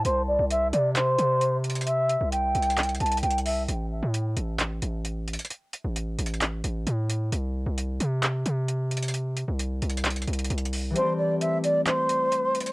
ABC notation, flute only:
X:1
M:4/4
L:1/8
Q:1/4=132
K:C
V:1 name="Flute"
c d e d c4 | e2 g3 a g e | z8 | z8 |
z8 | z8 | c d e d c4 |]